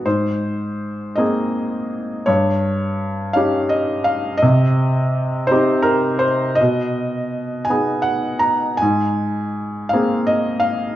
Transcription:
\new Staff \with { instrumentName = "Felt piano" } { \time 6/8 \key aes \major \tempo 4. = 55 << { c''4. ees''4. | des''4. f''8 ees''8 f''8 | ees''4. c''8 bes'8 c''8 | dis''4. gis''8 fis''8 bes''8 |
aes''4. f''8 ees''8 f''8 | } \\ { aes,4. <bes c' aes'>4. | g,4. <des' ees' g'>4. | c4. <c' ees' g'>4. | b,4. <b dis' gis'>4. |
aes,4. <bes c' aes'>4. | } >> }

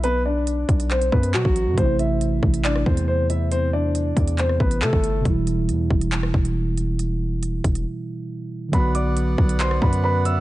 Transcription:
<<
  \new Staff \with { instrumentName = "Accordion" } { \time 4/4 \key b \phrygian \tempo 4 = 138 r1 | r1 | r1 | r1 |
r1 | <b b' d'' fis''>1 | }
  \new Staff \with { instrumentName = "Grand piano" } { \time 4/4 \key b \phrygian <b b'>8 <d' d''>4. <c' c''>8 <b b'>8 <fis fis'>4 | <c' c''>8 <e' e''>4. <d' d''>8 <c' c''>8 <c' c''>8 <e' e''>8 | <c' c''>8 <d' d''>4. <c' c''>8 <b b'>8 <a a'>4 | r1 |
r1 | <b' b''>8 <d'' d'''>4. <c'' c'''>8 <b' b''>8 <b' b''>8 <e'' e'''>8 | }
  \new Staff \with { instrumentName = "Tine electric piano" } { \clef bass \time 4/4 \key b \phrygian r1 | <c e a e'>1~ | <c e a e'>1 | <b, e g e'>1~ |
<b, e g e'>1 | <d fis b fis'>1 | }
  \new Staff \with { instrumentName = "808-style bass" } { \clef bass \time 4/4 \key b \phrygian b,,4. b,,4 fis,8 b,16 a,,8 fis,16 | a,,4. a,,4 e,4.~ | e,4. e,4 a,,8 c16 g,,8. | e,,4 e,8 e,,4 e,,4.~ |
e,,4. e,,8 r2 | b,,4. b,,4 fis,4. | }
  \new DrumStaff \with { instrumentName = "Drums" } \drummode { \time 4/4 hh4 hh8 <hh bd>16 hh16 <hc hh>16 hh16 bd16 hh16 hc16 bd16 hh8 | <hh bd>8 hh8 hh8 bd16 hh16 <hc hh>16 ss16 bd16 hh16 r8 hh8 | hh4 hh8 <hh bd>16 hh16 <hc hh>16 ss16 bd16 hh16 hc16 bd16 hh8 | <hh bd>8 hh8 hh8 bd16 hh16 <hc hh>16 ss16 bd16 hh16 r8 hh8 |
hh4 hh8 <hh bd>16 hh16 r4 r4 | <hh bd>8 hh8 hh8 bd16 hh16 <hc hh>16 ss16 bd16 hh16 r8 hh8 | }
>>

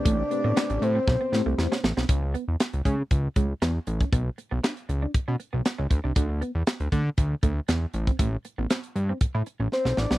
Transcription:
<<
  \new Staff \with { instrumentName = "Soft synth lead" } { \time 4/4 \key a \major \tempo 4 = 118 d''4. c''2 r8 | r1 | r1 | r1 |
r2. c''8 d''8 | }
  \new Staff \with { instrumentName = "Tine electric piano" } { \time 4/4 \key a \major <a c' g' b'>8 <a c' g' b'>4 r4 <a c' g' c''>4 r8 | r1 | r1 | r1 |
r1 | }
  \new Staff \with { instrumentName = "String machine" } { \time 4/4 \key a \major <c c' g'>1 | r1 | r1 | r1 |
r1 | }
  \new Staff \with { instrumentName = "Clean electric guitar" } { \time 4/4 \key a \major a16 r8 b16 b16 r8 c'16 r16 b16 r16 a16 r16 cis'16 r16 c'16 | cis'16 r16 b16 r8. gis16 r8. gis16 r16 b16 r8 cis'16 | b16 r8 b16 d'16 r8 d'16 r16 cis'16 r16 b16 r16 cis'16 r16 d'16 | d'16 r16 b16 r8. a16 r8. a16 r16 b16 r8 c'16 |
a16 r8 b16 c'16 r8 c'16 r16 e'16 r16 cis'16 r16 c'16 r16 c'16 | }
  \new Staff \with { instrumentName = "Analog synth bass" } { \clef bass \time 4/4 \key a \major a,,8 r16 a,16 r16 a,,16 a,8 b,,16 r16 a,16 c,16 e,16 r16 a,,16 b,,16 | cis,8. e,16 r16 cis,16 cis8 cis,8 cis,8 e,8 a,,8 | b,,8 r16 b,,16 r8 cis,8 b,16 b,16 r16 b,,16 r16 cis,16 d,16 bis,,16 | d,8. e,16 r16 d,16 d8 d,8 d,8 e,8 a,,8 |
a,,8 r16 a,,16 r8 g,8 a,16 a,16 r16 a,,16 r16 b,,16 a,,16 b,,16 | }
  \new DrumStaff \with { instrumentName = "Drums" } \drummode { \time 4/4 <hh bd>8 hh8 <hc hh sn>16 hh16 hh8 <bd sn>8 sn8 sn16 sn16 sn16 sn16 | <hh bd>8 hh8 <hc hh sn>16 hh16 <hh bd>8 <hh bd>8 <hh bd>8 <hc hh sn>8 hh16 <hh bd>16 | <hh bd>8 hh8 <hc hh sn>16 hh16 hh8 <hh bd>8 hh8 <hc hh sn>8 <hh bd>8 | <hh bd>8 hh8 <hc hh sn>16 hh16 <hh bd>8 <hh bd>8 <hh bd>8 <hc hh sn>8 hh16 <hh bd>16 |
<hh bd>8 hh8 <hc hh sn>16 hh16 hh8 <hh bd>8 hh8 sn16 sn16 sn16 sn16 | }
>>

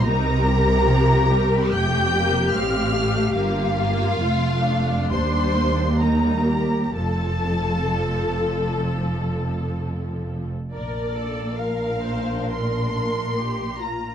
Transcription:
<<
  \new Staff \with { instrumentName = "Violin section" } { \time 4/4 \key bes \major \tempo 4 = 68 bes''2 g'''4 f'''4 | f''2 c'''4 bes''4 | a''2. r4 | d''4 f''4 c'''4. bes''8 | }
  \new Staff \with { instrumentName = "Violin section" } { \time 4/4 \key bes \major bes'2 g''4 f''4 | f'2 c''4 bes'4 | a'2. r4 | <d' bes'>1 | }
  \new Staff \with { instrumentName = "Viola section" } { \time 4/4 \key bes \major << { ees'8 g'2.~ g'8~ | g'4 f'8 d'4. ees'8 g'8 | a'2.~ a'8. r16 | bes'8 a'8 bes'8 c''8 bes'8 bes'8 g'8 f'8 | } \\ { g4 f8 g8 a8 bes8 c'8 a8 | bes8 bes8 a4 g4 g4 | f2.~ f8. r16 | r1 | } >> }
  \new Staff \with { instrumentName = "Cello section" } { \clef bass \time 4/4 \key bes \major c2 f,4 a,4 | g,4 f,4 ees,2 | f,2.~ f,8. r16 | bes,1 | }
  \new Staff \with { instrumentName = "Double bass section" } { \clef bass \time 4/4 \key bes \major c,2 f,,4 a,,4 | g,,4 f,,4 ees,2 | f,,2.~ f,,8. r16 | bes,,1 | }
>>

